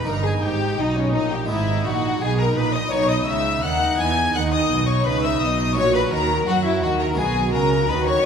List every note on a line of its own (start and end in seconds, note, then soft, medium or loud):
0.03 1.44 A#3 soft
0.03 1.44 D#4 soft
0.03 0.14 A#4 medium
0.07 0.42 G1 medium
0.07 0.42 G2 medium
0.07 0.39 G2 medium
0.07 0.77 D#4 medium
0.07 0.25 A#4 medium
0.07 0.25 A#5 medium
0.23 0.31 G#4 medium
0.23 0.33 G#4 medium
0.23 0.44 G#5 medium
0.42 0.77 G#1 medium
0.42 0.77 G#2 medium
0.42 0.75 G#2 medium
0.42 0.77 G4 medium
0.42 0.82 G4 medium
0.42 0.79 G5 medium
0.78 1.14 B1 medium
0.78 1.14 B2 medium
0.78 1.11 B2 medium
0.78 1.48 D#4 medium
0.78 0.97 D#4 medium
0.78 0.99 D#4 medium
0.78 0.97 D#5 medium
0.97 1.14 C#4 medium
0.97 1.16 C#4 medium
0.97 1.15 C#5 medium
1.13 1.50 A#1 medium
1.13 1.46 A#2 medium
1.13 1.50 A#2 medium
1.13 1.32 D#4 medium
1.13 1.34 D#4 medium
1.13 1.33 D#5 medium
1.32 1.50 G4 medium
1.32 1.50 G5 medium
1.46 1.85 G#1 medium
1.46 1.85 G#2 medium
1.46 1.82 G#2 medium
1.46 2.86 G#3 soft
1.46 2.86 B3 soft
1.46 2.87 D#4 medium
1.46 1.84 E5 medium
1.50 2.19 D#4 medium
1.50 1.85 E4 medium
1.85 2.20 A#1 medium
1.85 2.17 A#2 medium
1.85 2.20 A#2 medium
1.85 2.23 F#4 medium
1.85 2.21 F#4 medium
1.85 2.21 F#5 medium
2.20 2.55 B1 medium
2.20 2.56 B2 medium
2.20 2.53 B2 medium
2.20 2.91 D#4 medium
2.20 2.39 G#4 medium
2.20 2.39 G#5 medium
2.38 2.59 A#4 medium
2.38 2.57 A#4 medium
2.38 2.56 A#5 medium
2.56 2.91 A#1 medium
2.56 2.91 A#2 medium
2.56 2.88 A#2 medium
2.56 2.74 B4 medium
2.56 2.77 B4 medium
2.56 2.74 B5 medium
2.74 2.92 D#5 medium
2.74 2.93 D#5 medium
2.74 2.92 D#6 medium
2.90 3.27 B1 medium
2.90 3.27 B2 medium
2.90 3.25 B2 medium
2.90 5.71 B3 medium
2.90 5.72 D#4 medium
2.90 3.62 D#4 medium
2.90 3.12 C#5 medium
2.90 3.10 C#5 loud
2.90 3.10 C#6 loud
3.09 3.27 D#5 medium
3.09 3.30 D#5 medium
3.09 3.28 D#6 medium
3.27 3.63 C#2 medium
3.27 3.63 C#3 medium
3.27 3.60 C#3 medium
3.27 3.63 E5 medium
3.27 3.64 E5 medium
3.27 3.63 E6 medium
3.63 3.99 D#2 medium
3.63 3.96 D#3 medium
3.63 3.99 D#3 medium
3.63 4.34 D#4 medium
3.63 3.99 F#5 medium
3.63 4.01 F#5 medium
3.63 3.99 F#6 medium
3.99 4.34 E2 medium
3.99 4.31 E3 medium
3.99 4.34 E3 medium
3.99 4.38 G#5 medium
3.99 4.35 G#5 medium
3.99 4.34 G#6 medium
4.35 4.70 D#2 medium
4.35 4.70 D#3 medium
4.35 4.67 D#3 medium
4.35 5.05 D#4 medium
4.35 4.42 F#5 medium
4.35 4.53 F#5 medium
4.35 4.42 F#6 loud
4.53 4.89 D#5 medium
4.53 4.88 D#5 medium
4.53 4.88 D#6 medium
4.70 5.05 B1 medium
4.70 5.05 B2 medium
4.70 5.03 B2 medium
4.88 5.06 C#5 medium
4.88 5.06 C#6 medium
5.05 5.41 C#2 medium
5.05 5.37 C#3 medium
5.05 5.41 C#3 medium
5.05 5.75 D#4 medium
5.05 5.24 B4 medium
5.05 5.26 B4 medium
5.05 5.24 B5 loud
5.24 5.41 E5 medium
5.24 5.42 E5 medium
5.24 5.41 E6 medium
5.41 5.76 B1 medium
5.41 5.73 B2 medium
5.41 5.76 B2 medium
5.41 5.76 D#5 medium
5.41 5.78 D#5 medium
5.41 5.77 D#6 medium
5.73 6.12 A#1 medium
5.73 6.08 A#2 medium
5.73 6.12 A#2 medium
5.73 7.12 C#4 medium
5.73 7.13 F#4 medium
5.73 5.94 C#6 loud
5.77 6.46 F#4 medium
5.77 5.94 C#5 medium
5.94 6.12 B4 medium
5.94 6.02 B5 medium
6.11 6.47 D#2 medium
6.11 6.43 D#3 medium
6.11 6.47 D#3 medium
6.11 6.46 A#4 medium
6.11 6.47 A#4 medium
6.11 6.46 A#5 loud
6.47 6.82 F#2 medium
6.47 6.79 F#3 medium
6.47 6.82 F#3 medium
6.47 6.54 F#4 medium
6.47 7.17 F#4 medium
6.47 6.66 F#4 medium
6.47 6.64 F#5 medium
6.65 6.84 E4 medium
6.65 6.83 E4 medium
6.65 6.83 E5 medium
6.82 7.18 D#2 medium
6.82 7.14 D#3 medium
6.82 7.18 D#3 medium
6.82 6.99 F#4 medium
6.82 7.01 F#4 medium
6.82 6.89 F#5 medium
7.00 7.19 A#4 medium
7.00 7.07 A#5 medium
7.13 7.49 B2 medium
7.13 8.26 B3 medium
7.13 8.26 F#4 medium
7.13 7.53 G#4 medium
7.18 7.54 B1 medium
7.18 7.54 B2 medium
7.18 7.87 F#4 medium
7.18 7.53 G#4 medium
7.18 7.53 G#5 medium
7.53 7.88 C#2 medium
7.53 7.85 C#3 medium
7.53 7.88 C#3 medium
7.53 7.90 A#4 medium
7.53 7.89 A#4 medium
7.53 7.88 A#5 medium
7.89 8.24 D#2 medium
7.89 8.24 D#3 medium
7.89 8.20 D#3 medium
7.89 8.26 F#4 medium
7.89 8.06 B4 medium
7.89 8.07 B4 medium
7.89 8.07 B5 loud
8.06 8.24 C#5 medium
8.06 8.26 C#5 medium
8.06 8.24 C#6 loud